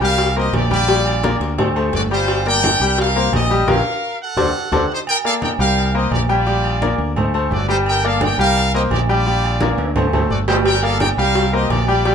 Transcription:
0.00 C2 G3 G4 A#4 F5 G5
0.18 cowbell, high conga, low agogo
0.36 A#3 G4 A#4 C5 D#5
0.53 A#1 G4 D5, cowbell, high conga, low timbale, low agogo
0.71 G3 F4 G4 D5 G5, high conga
0.88 G3 G4 G5, cowbell, low agogo
1.06 high conga, low agogo
1.23 A#3 A#4 D5, cowbell, high conga, low timbale, low agogo
1.40 D2, cowbell
1.58 A3 A4 C5, cowbell, high conga, low conga, low agogo
1.76 A3 A4 C5, high conga, low agogo
1.93 G1 F#4 D5, cowbell, high conga, low timbale
2.11 G3 F4 G4 C5 G5, low agogo
2.28 cowbell, high conga, low agogo
2.46 A#3 A#4 D5 G5, high conga, low agogo
2.63 cowbell, high conga, low timbale, low agogo
2.80 C2 G3 G4 G5
2.98 A#4 F5, cowbell, low agogo
3.16 A#3 A#4 C5
3.32 A#1 G4 D#5, cowbell, high conga, low timbale, low agogo
3.51 G3 G4 G5
3.67 A#1 F4 G4 A#4 F5, cowbell, high conga, high timbale
4.22 A4 F#5
4.37 D2 A4 C5 D5, cowbell, high conga, high timbale
4.72 D2 F#4 A4 C5 D5, cowbell, high conga, high timbale
4.93 D#4 C5
5.07 A#4 G5, high conga, low agogo
5.24 A#3 A4 A#4 D5 F5, high conga, low agogo
5.42 A#4 G5, high conga, low timbale, low agogo
5.59 C2 G3 G4 A#4 F5 G5
5.77 low agogo
5.94 A#3 G4 A#4 C5 D#5, high conga
6.11 A#1 G4 D5, high conga, low timbale, low agogo
6.29 G3 F4 G4 D5 G5
6.46 G3 G4 G5, high conga, low agogo
6.64 high conga, low agogo
6.81 A#3 A#4 D5, high conga, low timbale, low agogo
6.98 D2, high conga
7.16 A3 A4 C5, high conga, low conga, low agogo
7.34 A3 A4 C5, high conga, low agogo
7.51 G1 F#4 D5, high conga, low timbale
7.69 G3 D#4 G4 C5 G5, low agogo
7.86 A#4 G5, high conga, low agogo
8.04 A#3 A4 A#4 D5 F5, high conga, low agogo
8.21 A#4 G5, high conga, low timbale, low agogo
8.38 C2 G3 G4 A#4 F5 G5
8.56 low agogo
8.74 A#3 G4 A#4 C5 D#5
8.90 A#1 G4 D5, high conga, low timbale, low agogo
9.09 G3 F4 G4 D5 G5
9.26 G3 G4 G5, low agogo
9.44 low agogo
9.61 A#3 A#4 D5, high conga, high timbale, low agogo
9.77 D2, high conga, high timbale
9.96 A3 A4 C5, high conga, low conga, high timbale, low agogo
10.13 A3 A4 C5, high conga, low conga, low timbale, low agogo
10.30 G1 F#4 D5, high conga
10.48 G3 D#4 G4 C5 G5, low timbale, low agogo
10.65 A#4 G5, cowbell, high conga, low agogo
10.82 A#3 A4 A#4 D5 F5, high conga, low agogo
11.00 A#4 G5, cowbell, high conga, low timbale, low agogo
11.17 C2 G3 G4 A#4 F5 G5
11.35 cowbell, low agogo
11.53 A#3 G4 A#4 C5 D#5, high conga
11.70 A#1 G4 D5, cowbell, high conga, low timbale, low agogo
11.88 G3 F4 G4 D5 G5
12.05 G3 G4 G5, cowbell, low agogo

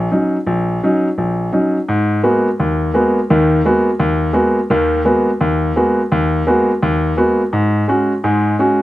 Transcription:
0.11 F#3 C#4 D#4
0.47 A#1
0.84 F#3 C#4 D#4
1.18 A#1
1.52 F#3 C#4 D#4
1.89 G#2
2.23 G#3 A#3 B3 F#4
2.60 D#2
2.94 G#3 A#3 B3 F#4
3.30 D#2 D#3
3.65 G#3 A#3 B3 F#4
3.99 D#2
4.33 G#3 A#3 B3 F#4
4.70 D#2 D#3
5.05 G#3 A#3 B3 F#4
5.41 D#2
5.76 G#3 A#3 B3 F#4
6.12 D#2
6.47 G#3 A#3 B3 F#4
6.82 D#2
7.17 G#3 A#3 B3 F#4
7.53 G#2
7.88 G#3 C#4 F#4
8.24 G#2 G#3
8.59 G#3 C#4 F#4

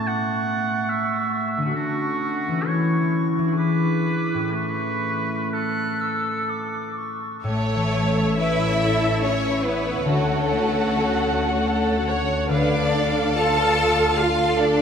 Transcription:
Already playing: A2 A3 C#4 E4 A4 C#6
0.07 F#5
0.90 E5
1.57 D3
1.62 C#4
1.66 F#4
1.71 A4
1.75 D4 F#4 C#6
2.48 E3
2.53 C#4
2.57 E4
2.62 A4 C#6
2.67 E4 C#5
3.39 E3
3.43 D4
3.48 E4
3.52 E4 G#4
3.57 B4 D6
4.34 A2
4.39 C#4
4.43 E4
4.48 A4
4.52 A3 B4 C#6
5.52 A4 F#6
6.00 E6
6.49 D6
6.97 C#6
7.44 A1 A2 A3 A4 C#5 E5
7.75 E3
8.07 C#4
8.38 E4 B4 E5
8.67 A4
8.83 A4
8.96 C#5
9.23 C#4 E4 A4 C#5
9.51 E4
9.65 B3 B4
9.78 C#4
10.05 D2 D3 A3 F#4 A4 F#5
10.33 A3
10.46 F#4
10.60 C#4
10.88 F#4
11.15 A4
11.42 C#5
11.67 A4
11.96 F#4
12.09 C#5
12.22 C#4
12.49 D3 D4 A4 B4 D5 F5
12.78 A3
12.91 A4
13.07 D4
13.35 F4 A4 A5
13.64 A4
13.92 D5
14.17 F4 A4 F5
14.45 F4
14.57 D4 D5
14.72 D4

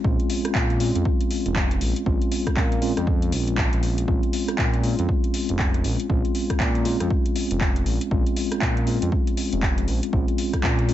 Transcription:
0.04 A#1 G#3 C4 C#4 F4, kick
0.20 closed hi-hat
0.30 open hi-hat
0.45 cross-stick, closed hi-hat
0.55 A#2, kick, clap
0.70 closed hi-hat
0.80 G#3 C4 C#4 F4, open hi-hat
0.95 F2, closed hi-hat
1.05 kick
1.21 closed hi-hat
1.31 open hi-hat
1.46 F1, closed hi-hat
1.56 kick, clap
1.71 closed hi-hat
1.81 A#1, open hi-hat
1.96 closed hi-hat
2.06 A#1 G#3 C4 C#4 F4, kick
2.22 closed hi-hat
2.32 open hi-hat
2.47 kick, cross-stick, closed hi-hat
2.57 A#2, kick, clap
2.72 closed hi-hat
2.81 G#3 C4 C#4 F4, open hi-hat
2.97 F2, cross-stick, closed hi-hat
3.07 kick
3.22 closed hi-hat
3.32 A#1, open hi-hat
3.48 closed hi-hat
3.58 kick, clap
3.73 A#1, closed hi-hat
3.83 open hi-hat
3.98 closed hi-hat
4.08 A#1 G#3 C4 C#4 F4, kick
4.23 closed hi-hat
4.33 open hi-hat
4.48 cross-stick, closed hi-hat
4.58 A#2, kick, clap
4.74 closed hi-hat
4.83 G#3 C4 C#4 F4, open hi-hat
4.99 F2, closed hi-hat
5.09 kick
5.24 closed hi-hat
5.34 open hi-hat
5.49 F1, closed hi-hat
5.59 kick, clap
5.74 closed hi-hat
5.84 A#1, open hi-hat
6.00 closed hi-hat
6.09 A#1 G#3 C4 C#4 F4, kick
6.25 closed hi-hat
6.35 open hi-hat
6.50 kick, cross-stick, closed hi-hat
6.60 A#2, kick, clap
6.75 closed hi-hat
6.85 G#3 C4 C#4 F4, open hi-hat
7.00 F2, cross-stick, closed hi-hat
7.10 kick
7.26 closed hi-hat
7.36 open hi-hat
7.51 F1, closed hi-hat
7.61 kick, clap
7.76 closed hi-hat
7.86 A#1, open hi-hat
8.01 closed hi-hat
8.11 A#1 G#3 C4 C#4 F4, kick
8.27 closed hi-hat
8.36 open hi-hat
8.52 cross-stick, closed hi-hat
8.62 A#2, kick, clap
8.77 closed hi-hat
8.87 G#3 C4 C#4 F4, open hi-hat
9.02 F2, closed hi-hat
9.12 kick
9.27 closed hi-hat
9.37 open hi-hat
9.53 F1, closed hi-hat
9.63 kick, clap
9.78 closed hi-hat
9.88 A#1, open hi-hat
10.03 closed hi-hat
10.13 A#1 G#3 C4 C#4 F4, kick
10.28 closed hi-hat
10.38 open hi-hat
10.53 kick, cross-stick, closed hi-hat
10.63 A#2, kick, clap
10.79 closed hi-hat
10.88 G#3 C4 C#4 F4, open hi-hat

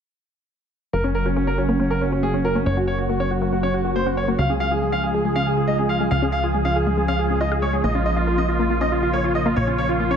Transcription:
0.93 F#1 C#3 F#3 A#3 F#4 A#4
1.04 C#4
1.15 C#3 F#3 A#3 F#4 A#4
1.26 C#4 F#4
1.36 C#3 F#3 A#3 C#4 F#4
1.47 C#4 A#4
1.58 C#3 F#3 A#3 C#4 F#4
1.69 A#3 C#4
1.80 C#3 F#3 A#3 C#4 F#4
1.90 C#4 A#4
2.01 C#3 F#3 A#3 C#4 F#4
2.12 C#4 F#4
2.23 C#3 F#3 A#3 F#4 G#4
2.34 C#4
2.44 C#3 F#3 A#3 F#4 A#4
2.55 A#3 C#4
2.66 F#1 C#3 F#3 A#3 F#4 C#5
2.77 C#4 F#4
2.88 C#3 F#3 A#3 F#4 C#5
2.98 F#4
3.09 C#3 F#3 A#3 F#4
3.20 C#4 C#5
3.31 C#3 F#3 A#3 F#4
3.42 A#3 F#4
3.52 C#3 F#3 A#3 F#4
3.63 C#4 C#5
3.74 C#3 F#3 A#3 F#4
3.84 F#4
3.95 C#3 F#3 A#3 F#4 C5
4.06 C#4 F#4
4.17 C#3 F#3 A#3 F#4 C#5
4.28 A#3 F#4
4.38 C#2 C#3 F3 G#3 F4 F5
4.49 C#4 G#4
4.60 C#3 F3 G#3 F4 F5
4.71 F4 G#4
4.81 C#3 F3 G#3 F4 G#4
4.92 C#4 F5
5.03 C#3 F3 G#3 F4 G#4
5.14 G#3 G#4
5.24 C#3 F3 G#3 F4 G#4
5.36 C#4 F5
5.46 C#3 F3 G#3 F4 G#4
5.57 F4 G#4
5.67 C#3 F3 G#3 F4 D#5
5.78 C#4 G#4
5.89 C#3 F3 G#3 F4 F5
6.00 G#3 G#4
6.11 C#2 C#3 F3 G#3 F4 F5
6.22 C#4 G#4
6.32 C#3 F3 G#3 F4 F5
6.43 F4 G#4
6.54 C#3 F3 G#3 F4 G#4
6.65 C#4 F5
6.76 C#3 F3 G#3 F4 G#4
6.87 G#3 G#4
6.97 C#3 F3 G#3 F4 G#4
7.08 C#4 F5
7.19 C#3 F3 G#3 F4 G#4
7.30 C#4 G#4
7.41 C#3 F3 G#3 F4 D#5
7.51 G#4 F5
7.62 C#3 F3 G#3 F4 C#5
7.73 G#3 G#4
7.84 A#1 C#3 F3 A#3 F4 D#5
7.95 C#4 F4
8.05 C#3 F3 A#3 F4 D#5
8.16 F4
8.27 C#3 F3 A#3 F4
8.38 C#4 D#5
8.49 C#3 F3 A#3 F4
8.59 A#3 F4
8.70 C#3 F3 A#3 F4
8.81 C#4 D#5
8.92 C#3 F3 A#3 F4
9.03 F4
9.13 C#3 F3 A#3 F4 C#5
9.24 C#4 F4
9.35 C#3 F3 A#3 F4 D#5
9.46 A#3 F4
9.56 A#1 C#3 F3 A#3 F4 C#5
9.67 C#4 F4
9.78 C#3 F3 A#3 F4 C#5
9.89 F4
10.00 C#3 F3 A#3 F4
10.10 C#4 C#5

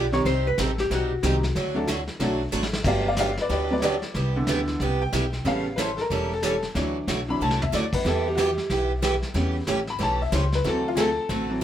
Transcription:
Already playing: B1 D5
0.12 D#3 G3 C4 D#4 G4 C#5, snare
0.25 C2 C3 G3 C4 D#4 G4 C5, brush sweep, kick, snare
0.47 B4
0.58 A1 C3 G3 C4 D#4 G4 A4, kick, snare, hi-hat pedal
0.78 G4, snare
0.90 B1 C3 G3 C4 D#4 F#4 G4, brush sweep, kick, snare
1.23 C2 C3 D#3 G3 C4 D#4 G4, kick, snare, hi-hat pedal
1.43 snare
1.55 D2 D3 F#3 A3 D4 F#4, brush sweep, kick, snare
1.74 F#3 A3 D4 F#4 A4
1.87 D3 F#3 A3 D4 F#4, kick, snare, hi-hat pedal
2.08 snare
2.20 B1 D3 F#3 A3 D4 F#4 A4, brush sweep, kick, snare
2.52 A1 D3 F#3 A3 D4 F#4, hi-hat pedal
2.63 snare
2.73 snare
2.83 G1 D3 F#3 A3 B3 D4 G4 D5 E5, brush sweep, kick, snare, crash
2.88 F5
3.08 D5 F5
3.17 D3 F#3 B3 D4 G4 D5 F5, kick, snare, hi-hat pedal
3.37 snare
3.41 B4 D5
3.49 D2 D3 F#3 B3 D4 G4 B4 D5, brush sweep, kick, snare
3.70 F#3 A3 B3 B4 D5
3.80 D3 F#3 B3 D4 G4 C#5, kick, snare, hi-hat pedal
3.84 D5
4.02 snare
4.14 C2 C3 G3 B3 E4 G4, brush sweep, kick, snare
4.36 D3 E3 B3
4.47 D2 C3 G3 B3 E4 G4, kick, snare, hi-hat pedal
4.67 snare
4.80 C2 C3 G3 B3 E4 G4, brush sweep, kick, snare
5.02 G5
5.12 B1 C3 G3 B3 E4 G4, kick, snare, hi-hat pedal
5.33 snare
5.44 A1 C#3 E3 G3 B3 C#4 E4 A4 F5, brush sweep, kick, snare
5.76 E3 G3 C#4 E4 A4 B4, kick, snare, hi-hat pedal
5.81 C5
5.98 A#4, snare
6.10 E1 E3 G3 C#4 E4 A4, brush sweep, kick, snare
6.34 A4
6.42 E3 G3 C#4 E4 A4, kick, snare, hi-hat pedal
6.63 snare
6.74 D2 D3 E3 F#3 A3 D4 E4 F#4, brush sweep, kick, snare
7.08 B1 D3 F#3 A3 E4 F#4, kick, snare, hi-hat pedal
7.28 E3 F#3 D4 B5
7.41 C2 D3 F#3 A3 E4 F#4 A5
7.51 snare
7.62 E5, floor tom
7.72 D2 D3 F#3 A3 E4 F#4 D5, snare, hi-hat pedal
7.93 B4, kick, crash
8.04 E2 E3 G3 B3 E4 G4 A4, brush sweep, kick, snare
8.27 G4
8.35 E3 B3 E4 F#4 G4, kick, snare, hi-hat pedal
8.40 G4
8.58 snare
8.70 B1 E3 B3 E4 G4, brush sweep, kick, snare
9.02 E3 B3 E4 G4, kick, snare, hi-hat pedal
9.22 snare
9.34 E2 C#3 E3 G3 A3 B3 C#4 G4, brush sweep, kick, snare
9.67 A1 E3 A3 C#4 G4, kick, snare, hi-hat pedal
9.87 B5, snare
9.99 B1 E3 A3 C#4 G4 A5, brush sweep, kick, snare
10.22 E5
10.32 C#2 E3 A3 C#4 G4 C5, kick, snare, hi-hat pedal
10.52 B4, snare
10.64 D2 D3 E3 F#3 A3 C4 F#4 A4, brush sweep, kick, snare
10.88 F4
10.95 D3 A3 C4 F#4 G#4 A4, kick, snare, hi-hat pedal
11.00 A4
11.29 A1 D3 A3 C4 F#4 A4, brush sweep, kick, snare
11.50 E3 F#3 C4

